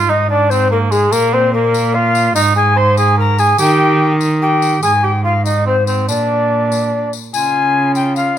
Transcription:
Already playing: cello G#2, cor anglais F4
0.09 cor anglais D#4, recorder D#5
0.30 cor anglais D4, recorder D5
0.50 cor anglais C4, recorder C5, tambourine
0.71 cor anglais A#3, recorder A#4
0.91 cor anglais G#3, recorder G#4, tambourine
1.12 cello A#2, cor anglais A#3, recorder A#4, tambourine
1.33 cor anglais C4, recorder C5
1.53 cor anglais A#3, recorder A#4
1.74 tambourine
1.94 cor anglais F4, recorder F5
2.15 tambourine
2.35 cello G#2, cor anglais D#4, recorder D#5, tambourine
2.56 cor anglais G#4, recorder G#5
2.76 cor anglais C5, recorder C6
2.97 cor anglais G#4, recorder G#5, tambourine
3.17 cor anglais A#4, recorder A#5
3.38 cor anglais G#4, recorder G#5, tambourine
3.58 cello D#3, cor anglais G4, recorder G5, tambourine
4.21 tambourine
4.42 cor anglais G4, recorder G5
4.62 tambourine
4.83 cello G#2, cor anglais G#4, recorder G#5, tambourine
5.03 cor anglais G4, recorder G5
5.24 cor anglais F4, recorder F5
5.45 cor anglais D#4, recorder D#5, tambourine
5.66 cor anglais C4, recorder C5
5.87 cor anglais C4, recorder C5, tambourine
6.08 cello A#2, cor anglais D4, recorder D5, tambourine
6.72 tambourine
7.13 tambourine
7.33 cello C#3, cor anglais F4, recorder G#5, tambourine
7.95 recorder G5, tambourine
8.16 cor anglais F4, recorder F5, tambourine

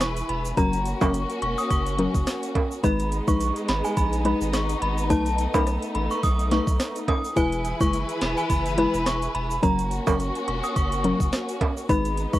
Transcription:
Already playing: sub bass E1, string section E3 E4 G#4 B4, impact
0.01 synth bell C#6, cross-stick, snare, closed hi-hat, shaker
0.17 closed hi-hat, shaker
0.29 sub bass E1, synth bell B5, closed hi-hat
0.45 shaker
0.57 sub bass F#1, synth pluck F#3 C#4 A#4, string section A#3 C#4 F#4, synth bell A#5, kick, closed hi-hat, shaker
0.73 closed hi-hat, shaker
0.85 closed hi-hat, shaker
1.01 sub bass F#1, synth pluck F#3 C#4 A#4, synth bell C#6, kick, high timbale, shaker
1.14 closed hi-hat, shaker
1.30 closed hi-hat, shaker
1.42 sub bass E1, synth bell C#6, closed hi-hat
1.58 synth bell D#6, shaker
1.70 sub bass F#1, synth bell C#6, kick, closed hi-hat, shaker
1.86 closed hi-hat, shaker
1.99 synth pluck F#3 C#4 A#4, closed hi-hat
2.15 sub bass F#1, kick, shaker
2.27 cross-stick, snare, closed hi-hat, shaker
2.43 closed hi-hat, shaker
2.55 kick, closed hi-hat, high timbale
2.71 shaker
2.83 sub bass G#1, synth pluck G#3 D#4 B4, string section G#3 B3 D#4, synth bell B5, kick, closed hi-hat, shaker
2.99 closed hi-hat, shaker
3.12 closed hi-hat, shaker
3.28 sub bass A#1, synth pluck G#3 D#4 B4, synth bell C#6, kick, shaker
3.40 closed hi-hat, shaker
3.56 closed hi-hat, shaker
3.68 sub bass G#1, synth bell B5, cross-stick, snare, closed hi-hat
3.84 synth bell G#5, shaker
3.97 sub bass A#1, synth bell B5, kick, closed hi-hat, shaker
4.13 closed hi-hat, shaker
4.25 synth pluck G#3 D#4 B4, synth bell B5, closed hi-hat
4.41 sub bass G#1, shaker
4.53 synth bell C#6, cross-stick, snare, closed hi-hat, shaker
4.69 closed hi-hat, shaker
4.82 sub bass G#1, synth bell B5, closed hi-hat
4.98 shaker
5.10 sub bass B1, synth pluck A3 D#4 B4, string section A3, synth bell A5, kick, closed hi-hat, shaker
5.26 closed hi-hat, shaker
5.38 closed hi-hat, shaker
5.54 sub bass B1, synth pluck A3 D#4 B4, synth bell B5, kick, high timbale, shaker
5.67 cross-stick, closed hi-hat, shaker
5.83 closed hi-hat, shaker
5.95 sub bass A1, synth bell B5, closed hi-hat
6.11 synth bell C#6, shaker
6.23 sub bass B1, synth bell D#6, kick, closed hi-hat, shaker
6.39 closed hi-hat, shaker
6.51 synth pluck A3 D#4 B4, synth bell C#6, snare, closed hi-hat
6.67 sub bass B1, kick, shaker
6.80 cross-stick, snare, closed hi-hat, shaker
6.96 closed hi-hat, shaker
7.08 synth bell D#6, kick, closed hi-hat, high timbale
7.24 shaker
7.36 sub bass E1, string section E3 E4 G#4 B4, synth pluck G#3 E4 B4, synth bell G#5, kick, closed hi-hat, shaker
7.52 closed hi-hat, shaker
7.65 closed hi-hat, shaker
7.80 sub bass F#1, synth pluck G#3 E4 B4, synth bell C#6, kick, shaker
7.93 closed hi-hat, shaker
8.09 closed hi-hat, shaker
8.21 sub bass E1, synth bell B5, cross-stick, snare, closed hi-hat
8.37 synth bell G#5, shaker
8.50 sub bass F#1, synth bell B5, kick, closed hi-hat, shaker
8.66 closed hi-hat, shaker
8.78 synth pluck G#3 E4 B4, synth bell B5, closed hi-hat
8.94 sub bass E1, shaker
9.06 synth bell C#6, cross-stick, snare, closed hi-hat, shaker
9.22 closed hi-hat, shaker
9.35 sub bass E1, synth bell B5, closed hi-hat
9.51 shaker
9.63 sub bass F#1, synth pluck F#3 C#4 A#4, string section A#3 C#4 F#4, synth bell A#5, kick, closed hi-hat, shaker
9.79 closed hi-hat, shaker
9.91 closed hi-hat, shaker
10.07 sub bass F#1, synth pluck F#3 C#4 A#4, synth bell C#6, kick, high timbale, shaker
10.20 closed hi-hat, shaker
10.35 closed hi-hat, shaker
10.48 sub bass E1, synth bell C#6, closed hi-hat
10.64 synth bell D#6, shaker
10.76 sub bass F#1, synth bell C#6, kick, closed hi-hat, shaker
10.92 closed hi-hat, shaker
11.04 synth pluck F#3 C#4 A#4, closed hi-hat
11.20 sub bass F#1, kick, shaker
11.33 cross-stick, snare, closed hi-hat, shaker
11.49 closed hi-hat, shaker
11.61 kick, closed hi-hat, high timbale
11.77 shaker
11.89 sub bass G#1, synth pluck G#3 D#4 B4, string section G#3 B3 D#4, synth bell B5, kick, closed hi-hat, shaker
12.05 closed hi-hat, shaker
12.18 closed hi-hat, shaker
12.33 sub bass A#1, synth pluck G#3 D#4 B4, synth bell C#6, kick, shaker

